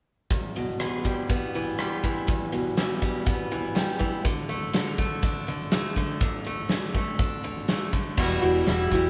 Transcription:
0.31 steel-string acoustic guitar E2, kick, closed hi-hat
0.56 steel-string acoustic guitar B2, closed hi-hat
0.80 steel-string acoustic guitar E3, cross-stick, closed hi-hat
1.05 steel-string acoustic guitar G3, kick, closed hi-hat
1.29 steel-string acoustic guitar B3, kick, closed hi-hat
1.55 steel-string acoustic guitar E3, closed hi-hat
1.78 steel-string acoustic guitar G3, cross-stick, closed hi-hat
2.04 steel-string acoustic guitar E3, kick, closed hi-hat
2.27 steel-string acoustic guitar E2, kick, closed hi-hat
2.52 steel-string acoustic guitar B2, closed hi-hat
2.77 steel-string acoustic guitar E3, snare, closed hi-hat
3.02 steel-string acoustic guitar G3, kick, closed hi-hat
3.26 steel-string acoustic guitar B3, kick, closed hi-hat
3.51 steel-string acoustic guitar E3, closed hi-hat
3.75 steel-string acoustic guitar G3, snare, closed hi-hat
3.99 steel-string acoustic guitar E3, kick, closed hi-hat
4.25 steel-string acoustic guitar D3, kick, closed hi-hat
4.49 steel-string acoustic guitar A3, closed hi-hat
4.73 steel-string acoustic guitar D3, snare, closed hi-hat
4.98 steel-string acoustic guitar A3, kick, closed hi-hat
5.23 steel-string acoustic guitar D4, kick, closed hi-hat
5.47 steel-string acoustic guitar D3, closed hi-hat
5.71 steel-string acoustic guitar A3, snare, closed hi-hat
5.96 steel-string acoustic guitar D3, kick, closed hi-hat
6.21 steel-string acoustic guitar D3, kick, closed hi-hat
6.45 steel-string acoustic guitar A3, closed hi-hat
6.69 steel-string acoustic guitar D3, snare, closed hi-hat
6.95 steel-string acoustic guitar A3, kick, closed hi-hat
7.19 steel-string acoustic guitar D4, kick, closed hi-hat
7.44 steel-string acoustic guitar D3, closed hi-hat
7.68 steel-string acoustic guitar A3, snare, closed hi-hat
7.93 steel-string acoustic guitar D3, kick, closed hi-hat
8.17 fingered electric bass E1, steel-string acoustic guitar E2 B2 E3 G3 E4 F#4, kick, crash
8.42 fingered electric bass E1, steel-string acoustic guitar E3 G3 E4 F#4
8.67 fingered electric bass E1, steel-string acoustic guitar E3 G3 E4 F#4, snare, open hi-hat
8.92 fingered electric bass E1, steel-string acoustic guitar E3 G3 E4 F#4, kick

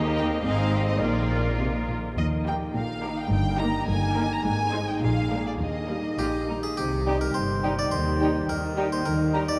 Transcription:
Already playing: cello section D#2, double bass section D#2, harp D#3 D#5, viola section A#3 D#4, violin section G4 D#5
0.07 harp D#4
0.17 violin section G5
0.25 harp G4 A#4
0.44 double bass section G#1, cello section G#2, harp G#2, viola section C4 D#4, violin section G#4 D#5 F5
0.63 harp D#4
0.73 violin section G4
0.82 harp G#4 C5
0.88 violin section D#5
1.01 double bass section A#1, harp A#2, cello section A#2, viola section A#3 F4, violin section F4 A#4 D5
1.20 harp A#3
1.40 harp F4
1.58 cello section C3, harp A#4
1.78 harp A#3
1.88 cello section A#2
1.98 harp F3
2.17 cello section D#2, double bass section D#2, harp D#3, violin section D#5
2.37 harp A#3
2.46 viola section A#3 D#4, violin section G4 A#4 G5
2.56 harp G4
2.74 double bass section A#1, cello section A#2, harp A#4, violin section F5
2.94 harp A#3
3.03 viola section A#3 D#4, violin section G4 A#4
3.13 harp D#4
3.19 violin section G5
3.31 double bass section G1, cello section G2, harp G2, violin section G5
3.50 harp A#3
3.59 viola section A#3 D#4, violin section G4 A#4 A#5
3.69 harp D#4
3.88 double bass section G1, cello section G2, harp A#4, violin section G#5
4.06 harp A#3
4.16 viola section A#3 D#4, violin section G4 A#4
4.25 harp G3
4.33 violin section A#5
4.44 double bass section G#1, harp G#2, cello section G#2, violin section G#5
4.63 harp C4
4.72 viola section G#3 D#4, violin section D#4 C5
4.82 harp D#4 G#4
4.88 violin section G5
5.01 double bass section A#1, harp A#2, cello section A#2, violin section F5
5.20 harp A#3
5.30 viola section G#3 A#3, violin section D4 A#4
5.40 harp D4 G#4
5.46 violin section D5
5.59 cello section D#2, double bass section D#2, harp D#3, violin section D#5
5.79 harp D#4
5.89 viola section G3 A#3, violin section D#4 A#4
5.99 harp G4
6.18 double bass section A#1, cello section A#2, violin section F4, harpsichord G4, harp A#4
6.38 harp D#4
6.48 viola section G3 A#3, violin section D#4
6.58 harp A#3
6.63 harpsichord G#4
6.77 double bass section C2, harp C3, cello section C3, french horn section G3 D#4, harpsichord G4
7.06 bassoon G3, harp C4, clarinet D#4, viola section D#4, violin section G4 G5, flute G5
7.21 harpsichord A#4
7.34 double bass section G1, cello section G2, harp G4, harpsichord C5
7.63 bassoon G3, clarinet D#4, harp D#4, viola section D#4, violin section G4 G5, flute G5
7.79 harpsichord D5
7.91 double bass section D#2, harp D#3, cello section D#3, harpsichord C5
8.21 bassoon G3, clarinet D#4, harp D#4, viola section D#4, violin section G4 G5, flute G5
8.49 double bass section D#2, cello section D#3, harp G4, harpsichord A#4
8.77 bassoon G3, harp D#4, viola section D#4, clarinet D#4, violin section G4 G5, flute G5
8.92 harpsichord C5
9.05 double bass section D#2, cello section D#3, harp D#3, french horn section G3 D#4, harpsichord A#4
9.33 bassoon G3, viola section D#4, harp D#4, clarinet D#4, violin section G4 A#5, flute A#5
9.48 harpsichord D5

